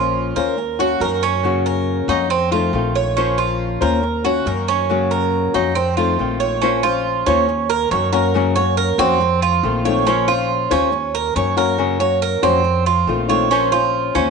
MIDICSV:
0, 0, Header, 1, 5, 480
1, 0, Start_track
1, 0, Key_signature, -5, "minor"
1, 0, Tempo, 430725
1, 1610, Time_signature, 4, 2, 24, 8
1, 15936, End_track
2, 0, Start_track
2, 0, Title_t, "Cuban tres"
2, 0, Program_c, 0, 25
2, 0, Note_on_c, 0, 65, 68
2, 392, Note_off_c, 0, 65, 0
2, 402, Note_on_c, 0, 70, 71
2, 871, Note_off_c, 0, 70, 0
2, 890, Note_on_c, 0, 66, 74
2, 1123, Note_off_c, 0, 66, 0
2, 1129, Note_on_c, 0, 70, 70
2, 1362, Note_off_c, 0, 70, 0
2, 1368, Note_on_c, 0, 61, 85
2, 1836, Note_off_c, 0, 61, 0
2, 1849, Note_on_c, 0, 70, 67
2, 2317, Note_off_c, 0, 70, 0
2, 2329, Note_on_c, 0, 63, 72
2, 2564, Note_off_c, 0, 63, 0
2, 2566, Note_on_c, 0, 60, 77
2, 2802, Note_off_c, 0, 60, 0
2, 2809, Note_on_c, 0, 65, 73
2, 3277, Note_off_c, 0, 65, 0
2, 3293, Note_on_c, 0, 73, 70
2, 3527, Note_off_c, 0, 73, 0
2, 3530, Note_on_c, 0, 61, 81
2, 3765, Note_off_c, 0, 61, 0
2, 3766, Note_on_c, 0, 65, 70
2, 4237, Note_off_c, 0, 65, 0
2, 4255, Note_on_c, 0, 70, 70
2, 4722, Note_off_c, 0, 70, 0
2, 4732, Note_on_c, 0, 66, 74
2, 4968, Note_off_c, 0, 66, 0
2, 4980, Note_on_c, 0, 70, 63
2, 5212, Note_off_c, 0, 70, 0
2, 5220, Note_on_c, 0, 61, 80
2, 5685, Note_off_c, 0, 61, 0
2, 5694, Note_on_c, 0, 70, 69
2, 6163, Note_off_c, 0, 70, 0
2, 6178, Note_on_c, 0, 63, 72
2, 6411, Note_off_c, 0, 63, 0
2, 6411, Note_on_c, 0, 60, 77
2, 6648, Note_off_c, 0, 60, 0
2, 6652, Note_on_c, 0, 65, 70
2, 7122, Note_off_c, 0, 65, 0
2, 7132, Note_on_c, 0, 73, 68
2, 7369, Note_off_c, 0, 73, 0
2, 7373, Note_on_c, 0, 61, 76
2, 7609, Note_off_c, 0, 61, 0
2, 7613, Note_on_c, 0, 65, 83
2, 8082, Note_off_c, 0, 65, 0
2, 8095, Note_on_c, 0, 61, 93
2, 8563, Note_off_c, 0, 61, 0
2, 8576, Note_on_c, 0, 70, 81
2, 8810, Note_off_c, 0, 70, 0
2, 8818, Note_on_c, 0, 73, 72
2, 9051, Note_off_c, 0, 73, 0
2, 9055, Note_on_c, 0, 70, 77
2, 9522, Note_off_c, 0, 70, 0
2, 9534, Note_on_c, 0, 73, 80
2, 9769, Note_off_c, 0, 73, 0
2, 9776, Note_on_c, 0, 70, 79
2, 10010, Note_off_c, 0, 70, 0
2, 10018, Note_on_c, 0, 60, 92
2, 10483, Note_off_c, 0, 60, 0
2, 10501, Note_on_c, 0, 65, 77
2, 10965, Note_off_c, 0, 65, 0
2, 10981, Note_on_c, 0, 73, 73
2, 11212, Note_off_c, 0, 73, 0
2, 11218, Note_on_c, 0, 61, 78
2, 11450, Note_off_c, 0, 61, 0
2, 11455, Note_on_c, 0, 65, 75
2, 11921, Note_off_c, 0, 65, 0
2, 11938, Note_on_c, 0, 61, 90
2, 12402, Note_off_c, 0, 61, 0
2, 12422, Note_on_c, 0, 70, 79
2, 12651, Note_off_c, 0, 70, 0
2, 12660, Note_on_c, 0, 73, 73
2, 12890, Note_off_c, 0, 73, 0
2, 12899, Note_on_c, 0, 70, 74
2, 13362, Note_off_c, 0, 70, 0
2, 13374, Note_on_c, 0, 73, 76
2, 13606, Note_off_c, 0, 73, 0
2, 13619, Note_on_c, 0, 70, 77
2, 13849, Note_off_c, 0, 70, 0
2, 13853, Note_on_c, 0, 60, 88
2, 14317, Note_off_c, 0, 60, 0
2, 14335, Note_on_c, 0, 65, 78
2, 14798, Note_off_c, 0, 65, 0
2, 14817, Note_on_c, 0, 73, 78
2, 15046, Note_off_c, 0, 73, 0
2, 15055, Note_on_c, 0, 61, 80
2, 15285, Note_off_c, 0, 61, 0
2, 15290, Note_on_c, 0, 65, 78
2, 15754, Note_off_c, 0, 65, 0
2, 15769, Note_on_c, 0, 61, 81
2, 15936, Note_off_c, 0, 61, 0
2, 15936, End_track
3, 0, Start_track
3, 0, Title_t, "Nylon-string guitar"
3, 0, Program_c, 1, 24
3, 0, Note_on_c, 1, 53, 63
3, 0, Note_on_c, 1, 58, 69
3, 0, Note_on_c, 1, 61, 68
3, 0, Note_on_c, 1, 65, 64
3, 0, Note_on_c, 1, 72, 81
3, 387, Note_off_c, 1, 72, 0
3, 394, Note_off_c, 1, 53, 0
3, 395, Note_off_c, 1, 65, 0
3, 397, Note_off_c, 1, 58, 0
3, 399, Note_off_c, 1, 61, 0
3, 400, Note_on_c, 1, 72, 58
3, 409, Note_on_c, 1, 65, 62
3, 415, Note_on_c, 1, 61, 53
3, 418, Note_on_c, 1, 58, 55
3, 633, Note_off_c, 1, 58, 0
3, 635, Note_off_c, 1, 72, 0
3, 636, Note_off_c, 1, 61, 0
3, 639, Note_off_c, 1, 65, 0
3, 880, Note_on_c, 1, 66, 67
3, 893, Note_on_c, 1, 61, 68
3, 902, Note_on_c, 1, 58, 60
3, 1114, Note_off_c, 1, 58, 0
3, 1115, Note_off_c, 1, 66, 0
3, 1120, Note_on_c, 1, 51, 52
3, 1122, Note_off_c, 1, 61, 0
3, 1127, Note_on_c, 1, 58, 52
3, 1134, Note_on_c, 1, 61, 47
3, 1138, Note_on_c, 1, 66, 52
3, 1594, Note_off_c, 1, 58, 0
3, 1596, Note_off_c, 1, 51, 0
3, 1596, Note_on_c, 1, 49, 69
3, 1603, Note_off_c, 1, 61, 0
3, 1605, Note_off_c, 1, 66, 0
3, 1606, Note_on_c, 1, 54, 67
3, 1608, Note_on_c, 1, 58, 71
3, 1614, Note_on_c, 1, 61, 70
3, 1617, Note_on_c, 1, 66, 75
3, 2311, Note_off_c, 1, 66, 0
3, 2315, Note_off_c, 1, 49, 0
3, 2317, Note_off_c, 1, 61, 0
3, 2320, Note_off_c, 1, 54, 0
3, 2321, Note_off_c, 1, 58, 0
3, 2325, Note_on_c, 1, 66, 70
3, 2331, Note_on_c, 1, 61, 62
3, 2337, Note_on_c, 1, 58, 55
3, 2344, Note_on_c, 1, 54, 53
3, 2559, Note_off_c, 1, 66, 0
3, 2562, Note_off_c, 1, 61, 0
3, 2563, Note_off_c, 1, 54, 0
3, 2565, Note_off_c, 1, 58, 0
3, 2801, Note_on_c, 1, 65, 77
3, 2809, Note_on_c, 1, 60, 61
3, 2812, Note_on_c, 1, 57, 65
3, 2820, Note_on_c, 1, 51, 56
3, 3035, Note_off_c, 1, 51, 0
3, 3038, Note_off_c, 1, 65, 0
3, 3039, Note_off_c, 1, 57, 0
3, 3042, Note_off_c, 1, 60, 0
3, 3048, Note_on_c, 1, 51, 52
3, 3052, Note_on_c, 1, 57, 47
3, 3060, Note_on_c, 1, 60, 47
3, 3066, Note_on_c, 1, 65, 57
3, 3522, Note_off_c, 1, 51, 0
3, 3524, Note_off_c, 1, 57, 0
3, 3528, Note_off_c, 1, 60, 0
3, 3529, Note_on_c, 1, 53, 69
3, 3531, Note_off_c, 1, 65, 0
3, 3533, Note_on_c, 1, 58, 64
3, 3540, Note_on_c, 1, 61, 74
3, 3544, Note_on_c, 1, 65, 79
3, 3547, Note_on_c, 1, 72, 78
3, 4231, Note_off_c, 1, 72, 0
3, 4240, Note_off_c, 1, 65, 0
3, 4243, Note_off_c, 1, 53, 0
3, 4245, Note_off_c, 1, 61, 0
3, 4245, Note_on_c, 1, 72, 64
3, 4246, Note_off_c, 1, 58, 0
3, 4254, Note_on_c, 1, 65, 67
3, 4258, Note_on_c, 1, 61, 62
3, 4265, Note_on_c, 1, 58, 58
3, 4480, Note_off_c, 1, 58, 0
3, 4481, Note_off_c, 1, 72, 0
3, 4483, Note_off_c, 1, 61, 0
3, 4486, Note_off_c, 1, 65, 0
3, 4730, Note_on_c, 1, 66, 72
3, 4742, Note_on_c, 1, 61, 70
3, 4751, Note_on_c, 1, 58, 56
3, 4964, Note_off_c, 1, 66, 0
3, 4965, Note_off_c, 1, 58, 0
3, 4970, Note_off_c, 1, 61, 0
3, 4972, Note_on_c, 1, 51, 46
3, 4978, Note_on_c, 1, 58, 53
3, 4987, Note_on_c, 1, 61, 57
3, 4991, Note_on_c, 1, 66, 56
3, 5446, Note_off_c, 1, 51, 0
3, 5449, Note_off_c, 1, 58, 0
3, 5452, Note_on_c, 1, 49, 70
3, 5453, Note_off_c, 1, 61, 0
3, 5455, Note_off_c, 1, 66, 0
3, 5458, Note_on_c, 1, 54, 76
3, 5463, Note_on_c, 1, 58, 81
3, 5467, Note_on_c, 1, 61, 71
3, 5469, Note_on_c, 1, 66, 77
3, 6161, Note_off_c, 1, 66, 0
3, 6167, Note_off_c, 1, 49, 0
3, 6168, Note_off_c, 1, 61, 0
3, 6169, Note_off_c, 1, 54, 0
3, 6172, Note_off_c, 1, 58, 0
3, 6175, Note_on_c, 1, 66, 66
3, 6181, Note_on_c, 1, 61, 62
3, 6188, Note_on_c, 1, 58, 52
3, 6193, Note_on_c, 1, 54, 58
3, 6407, Note_off_c, 1, 66, 0
3, 6411, Note_off_c, 1, 61, 0
3, 6413, Note_off_c, 1, 54, 0
3, 6414, Note_off_c, 1, 58, 0
3, 6655, Note_on_c, 1, 65, 72
3, 6660, Note_on_c, 1, 60, 72
3, 6669, Note_on_c, 1, 57, 64
3, 6673, Note_on_c, 1, 51, 54
3, 6883, Note_off_c, 1, 51, 0
3, 6888, Note_off_c, 1, 65, 0
3, 6890, Note_off_c, 1, 60, 0
3, 6892, Note_off_c, 1, 57, 0
3, 6896, Note_on_c, 1, 51, 48
3, 6905, Note_on_c, 1, 57, 55
3, 6912, Note_on_c, 1, 60, 53
3, 6918, Note_on_c, 1, 65, 52
3, 7368, Note_off_c, 1, 51, 0
3, 7373, Note_off_c, 1, 57, 0
3, 7376, Note_off_c, 1, 60, 0
3, 7377, Note_on_c, 1, 53, 75
3, 7379, Note_off_c, 1, 65, 0
3, 7382, Note_on_c, 1, 58, 68
3, 7388, Note_on_c, 1, 61, 83
3, 7393, Note_on_c, 1, 65, 77
3, 7396, Note_on_c, 1, 72, 79
3, 7604, Note_off_c, 1, 72, 0
3, 7609, Note_off_c, 1, 53, 0
3, 7611, Note_off_c, 1, 58, 0
3, 7614, Note_off_c, 1, 65, 0
3, 7615, Note_off_c, 1, 61, 0
3, 7617, Note_on_c, 1, 72, 51
3, 7628, Note_on_c, 1, 65, 45
3, 7638, Note_on_c, 1, 61, 37
3, 8084, Note_off_c, 1, 72, 0
3, 8091, Note_off_c, 1, 65, 0
3, 8097, Note_on_c, 1, 72, 73
3, 8099, Note_off_c, 1, 61, 0
3, 8105, Note_on_c, 1, 65, 66
3, 8111, Note_on_c, 1, 61, 60
3, 8119, Note_on_c, 1, 58, 58
3, 8329, Note_off_c, 1, 58, 0
3, 8329, Note_off_c, 1, 72, 0
3, 8332, Note_off_c, 1, 61, 0
3, 8332, Note_off_c, 1, 65, 0
3, 8817, Note_on_c, 1, 51, 54
3, 8826, Note_on_c, 1, 58, 49
3, 8829, Note_on_c, 1, 61, 49
3, 8838, Note_on_c, 1, 66, 55
3, 9045, Note_off_c, 1, 66, 0
3, 9048, Note_off_c, 1, 51, 0
3, 9053, Note_off_c, 1, 58, 0
3, 9055, Note_off_c, 1, 61, 0
3, 9058, Note_on_c, 1, 66, 76
3, 9069, Note_on_c, 1, 61, 71
3, 9077, Note_on_c, 1, 58, 61
3, 9289, Note_off_c, 1, 66, 0
3, 9293, Note_off_c, 1, 58, 0
3, 9294, Note_off_c, 1, 61, 0
3, 9295, Note_on_c, 1, 49, 73
3, 9303, Note_on_c, 1, 54, 65
3, 9306, Note_on_c, 1, 58, 77
3, 9310, Note_on_c, 1, 61, 80
3, 9315, Note_on_c, 1, 66, 90
3, 9527, Note_off_c, 1, 49, 0
3, 9527, Note_off_c, 1, 66, 0
3, 9531, Note_off_c, 1, 54, 0
3, 9533, Note_off_c, 1, 58, 0
3, 9535, Note_off_c, 1, 61, 0
3, 9540, Note_on_c, 1, 66, 49
3, 9550, Note_on_c, 1, 61, 44
3, 9561, Note_on_c, 1, 58, 41
3, 10003, Note_off_c, 1, 66, 0
3, 10012, Note_off_c, 1, 61, 0
3, 10016, Note_off_c, 1, 58, 0
3, 10016, Note_on_c, 1, 66, 79
3, 10025, Note_on_c, 1, 61, 65
3, 10030, Note_on_c, 1, 58, 65
3, 10036, Note_on_c, 1, 54, 58
3, 10247, Note_off_c, 1, 66, 0
3, 10252, Note_off_c, 1, 61, 0
3, 10254, Note_off_c, 1, 58, 0
3, 10257, Note_off_c, 1, 54, 0
3, 10737, Note_on_c, 1, 51, 56
3, 10743, Note_on_c, 1, 57, 56
3, 10749, Note_on_c, 1, 60, 58
3, 10754, Note_on_c, 1, 65, 61
3, 10963, Note_off_c, 1, 65, 0
3, 10968, Note_off_c, 1, 51, 0
3, 10971, Note_off_c, 1, 57, 0
3, 10973, Note_off_c, 1, 60, 0
3, 10976, Note_on_c, 1, 65, 64
3, 10986, Note_on_c, 1, 60, 67
3, 10992, Note_on_c, 1, 57, 63
3, 10998, Note_on_c, 1, 51, 57
3, 11207, Note_off_c, 1, 65, 0
3, 11212, Note_off_c, 1, 60, 0
3, 11215, Note_off_c, 1, 57, 0
3, 11216, Note_on_c, 1, 53, 69
3, 11217, Note_off_c, 1, 51, 0
3, 11221, Note_on_c, 1, 58, 75
3, 11226, Note_on_c, 1, 61, 78
3, 11231, Note_on_c, 1, 65, 77
3, 11237, Note_on_c, 1, 72, 73
3, 11439, Note_off_c, 1, 72, 0
3, 11446, Note_off_c, 1, 53, 0
3, 11449, Note_off_c, 1, 58, 0
3, 11449, Note_off_c, 1, 65, 0
3, 11452, Note_off_c, 1, 61, 0
3, 11452, Note_on_c, 1, 72, 56
3, 11462, Note_on_c, 1, 65, 44
3, 11473, Note_on_c, 1, 61, 40
3, 11918, Note_off_c, 1, 72, 0
3, 11925, Note_off_c, 1, 65, 0
3, 11930, Note_off_c, 1, 61, 0
3, 11932, Note_on_c, 1, 72, 72
3, 11939, Note_on_c, 1, 65, 74
3, 11944, Note_on_c, 1, 61, 57
3, 11951, Note_on_c, 1, 58, 57
3, 12162, Note_off_c, 1, 58, 0
3, 12164, Note_off_c, 1, 72, 0
3, 12165, Note_off_c, 1, 61, 0
3, 12167, Note_off_c, 1, 65, 0
3, 12648, Note_on_c, 1, 51, 53
3, 12660, Note_on_c, 1, 58, 58
3, 12664, Note_on_c, 1, 61, 54
3, 12669, Note_on_c, 1, 66, 59
3, 12878, Note_off_c, 1, 66, 0
3, 12882, Note_off_c, 1, 51, 0
3, 12887, Note_off_c, 1, 58, 0
3, 12889, Note_off_c, 1, 61, 0
3, 12891, Note_on_c, 1, 66, 76
3, 12903, Note_on_c, 1, 61, 69
3, 12911, Note_on_c, 1, 58, 65
3, 13123, Note_off_c, 1, 66, 0
3, 13124, Note_off_c, 1, 58, 0
3, 13126, Note_off_c, 1, 61, 0
3, 13127, Note_on_c, 1, 49, 67
3, 13131, Note_on_c, 1, 54, 71
3, 13138, Note_on_c, 1, 58, 76
3, 13139, Note_on_c, 1, 61, 70
3, 13145, Note_on_c, 1, 66, 76
3, 13353, Note_off_c, 1, 66, 0
3, 13360, Note_off_c, 1, 49, 0
3, 13362, Note_off_c, 1, 54, 0
3, 13366, Note_off_c, 1, 58, 0
3, 13367, Note_off_c, 1, 61, 0
3, 13367, Note_on_c, 1, 66, 51
3, 13378, Note_on_c, 1, 61, 44
3, 13387, Note_on_c, 1, 58, 40
3, 13833, Note_off_c, 1, 66, 0
3, 13839, Note_off_c, 1, 61, 0
3, 13846, Note_off_c, 1, 58, 0
3, 13846, Note_on_c, 1, 66, 70
3, 13853, Note_on_c, 1, 61, 72
3, 13859, Note_on_c, 1, 58, 59
3, 13866, Note_on_c, 1, 54, 52
3, 14079, Note_off_c, 1, 66, 0
3, 14083, Note_off_c, 1, 54, 0
3, 14083, Note_off_c, 1, 61, 0
3, 14086, Note_off_c, 1, 58, 0
3, 14570, Note_on_c, 1, 51, 50
3, 14575, Note_on_c, 1, 57, 57
3, 14582, Note_on_c, 1, 60, 59
3, 14588, Note_on_c, 1, 65, 65
3, 14792, Note_off_c, 1, 65, 0
3, 14800, Note_off_c, 1, 51, 0
3, 14802, Note_off_c, 1, 60, 0
3, 14803, Note_off_c, 1, 57, 0
3, 14805, Note_on_c, 1, 65, 66
3, 14815, Note_on_c, 1, 60, 66
3, 14821, Note_on_c, 1, 57, 64
3, 14829, Note_on_c, 1, 51, 59
3, 15038, Note_off_c, 1, 65, 0
3, 15043, Note_off_c, 1, 60, 0
3, 15046, Note_off_c, 1, 57, 0
3, 15049, Note_on_c, 1, 53, 76
3, 15050, Note_off_c, 1, 51, 0
3, 15054, Note_on_c, 1, 58, 73
3, 15057, Note_on_c, 1, 61, 78
3, 15062, Note_on_c, 1, 65, 71
3, 15065, Note_on_c, 1, 72, 77
3, 15275, Note_off_c, 1, 72, 0
3, 15279, Note_off_c, 1, 53, 0
3, 15282, Note_off_c, 1, 58, 0
3, 15284, Note_off_c, 1, 61, 0
3, 15286, Note_off_c, 1, 65, 0
3, 15288, Note_on_c, 1, 72, 53
3, 15301, Note_on_c, 1, 65, 42
3, 15309, Note_on_c, 1, 61, 46
3, 15753, Note_off_c, 1, 72, 0
3, 15759, Note_off_c, 1, 65, 0
3, 15765, Note_off_c, 1, 61, 0
3, 15766, Note_on_c, 1, 72, 69
3, 15772, Note_on_c, 1, 65, 71
3, 15779, Note_on_c, 1, 61, 62
3, 15785, Note_on_c, 1, 58, 51
3, 15936, Note_off_c, 1, 58, 0
3, 15936, Note_off_c, 1, 61, 0
3, 15936, Note_off_c, 1, 65, 0
3, 15936, Note_off_c, 1, 72, 0
3, 15936, End_track
4, 0, Start_track
4, 0, Title_t, "Upright bass"
4, 0, Program_c, 2, 32
4, 0, Note_on_c, 2, 34, 85
4, 339, Note_off_c, 2, 34, 0
4, 397, Note_on_c, 2, 39, 78
4, 1079, Note_off_c, 2, 39, 0
4, 1116, Note_on_c, 2, 42, 90
4, 2256, Note_off_c, 2, 42, 0
4, 2316, Note_on_c, 2, 41, 91
4, 3001, Note_off_c, 2, 41, 0
4, 3042, Note_on_c, 2, 34, 92
4, 4181, Note_off_c, 2, 34, 0
4, 4250, Note_on_c, 2, 39, 84
4, 4930, Note_off_c, 2, 39, 0
4, 4969, Note_on_c, 2, 42, 91
4, 6106, Note_off_c, 2, 42, 0
4, 6178, Note_on_c, 2, 41, 89
4, 6854, Note_off_c, 2, 41, 0
4, 6898, Note_on_c, 2, 34, 79
4, 8030, Note_off_c, 2, 34, 0
4, 8096, Note_on_c, 2, 39, 91
4, 8773, Note_off_c, 2, 39, 0
4, 8815, Note_on_c, 2, 42, 94
4, 9947, Note_off_c, 2, 42, 0
4, 10009, Note_on_c, 2, 41, 98
4, 10688, Note_off_c, 2, 41, 0
4, 10735, Note_on_c, 2, 34, 96
4, 11866, Note_off_c, 2, 34, 0
4, 11935, Note_on_c, 2, 39, 93
4, 12610, Note_off_c, 2, 39, 0
4, 12656, Note_on_c, 2, 42, 89
4, 13785, Note_off_c, 2, 42, 0
4, 13851, Note_on_c, 2, 41, 95
4, 14526, Note_off_c, 2, 41, 0
4, 14567, Note_on_c, 2, 34, 81
4, 15698, Note_off_c, 2, 34, 0
4, 15769, Note_on_c, 2, 39, 96
4, 15936, Note_off_c, 2, 39, 0
4, 15936, End_track
5, 0, Start_track
5, 0, Title_t, "Muted nylon-string guitar strokes"
5, 642, Note_on_c, 9, 29, 47
5, 753, Note_off_c, 9, 29, 0
5, 2565, Note_on_c, 9, 29, 58
5, 2677, Note_off_c, 9, 29, 0
5, 4489, Note_on_c, 9, 29, 57
5, 4601, Note_off_c, 9, 29, 0
5, 6415, Note_on_c, 9, 29, 54
5, 6526, Note_off_c, 9, 29, 0
5, 8341, Note_on_c, 9, 29, 50
5, 8453, Note_off_c, 9, 29, 0
5, 10260, Note_on_c, 9, 29, 60
5, 10371, Note_off_c, 9, 29, 0
5, 12170, Note_on_c, 9, 29, 61
5, 12281, Note_off_c, 9, 29, 0
5, 14086, Note_on_c, 9, 29, 59
5, 14198, Note_off_c, 9, 29, 0
5, 15936, End_track
0, 0, End_of_file